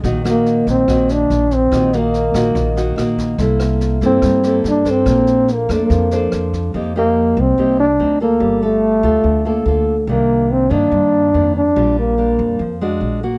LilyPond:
<<
  \new Staff \with { instrumentName = "Nylon-string guitar" } { \time 4/4 \key bes \major \tempo 4 = 143 << { <bes ees' ges'>8 <bes ees' ges'>4. <bes ges'>4. r8 | <bes ees' ges'>8 <bes ees' ges'>4 <bes ees' ges'>4 <bes ees' ges'>8 <bes ees' ges'>4 | <bes e' a'>4. <bes e' a'>4 <bes e' a'>4 <d' a' c''>8~ | <d' a' c''>4. <d' a' c''>4 <d' a' c''>4. |
<bes ees' g'>8 <bes ees' g'>4. <bes ees' g'>8 r8 <fis c' ees'>8 <bes f' a'>8~ | <bes f' a'>8 <f' a'>4 <f' a'>4 <bes f' a'>8 <bes f' a'>8 r8 | <ees bes d'>4. <ees bes d'>4. <ees bes d'>8 r8 | <g d' f'>4 <g d' f'>4 r8 <aes d' ges'>4 <bes fis'>8 | } \\ { ees2 ees2 | ees2 ees2 | c2 g2 | bes2 f2 |
f2 c4 r4 | g2 d2 | c2 g,2 | bes,2 f4 r4 | } >> }
  \new Staff \with { instrumentName = "Trombone" } { \time 4/4 \key bes \major r8 bes4 c'4 d'4 c'8~ | c'8 bes2. r8 | r4. c'4. d'8 c'8~ | c'4 bes8 bes2 r8 |
r8 bes4 c'4 d'4 bes8~ | bes8 a2. r8 | bes4 c'8 d'2 d'8~ | d'8 bes2 r4. | }
  \new Staff \with { instrumentName = "Upright bass" } { \clef bass \time 4/4 \key bes \major bes,,4. bes,,8 bes,,4 bes,,4 | bes,,4. bes,,8 bes,,4 bes,,4 | c,4. g,8 g,4 g,4 | bes,,4. f,8 f,4 f,4 |
f,4. c,8 c,4 d,4 | g,,4. d,8 d,4 d,4 | c,4. g,8 g,4 f,4 | bes,,4. f,8 f,4 bes,,4 | }
  \new DrumStaff \with { instrumentName = "Drums" } \drummode { \time 4/4 <bd sn>8 <ss sn>8 sn8 <bd sn>8 <bd ss sn>8 sn8 sn8 <bd sn>8 | <bd ss sn>8 sn8 sn8 <bd ss sn>8 <bd sn>8 sn8 <ss sn>8 <bd sn>8 | <bd sn>8 <ss sn>8 sn8 <bd sn>8 <bd ss sn>8 sn8 sn8 <bd sn>8 | <bd ss sn>8 sn8 sn8 <bd ss sn>8 <bd sn>8 sn8 <ss sn>8 <bd sn>8 |
r4 r4 r4 r4 | r4 r4 r4 r4 | r4 r4 r4 r4 | r4 r4 r4 r4 | }
>>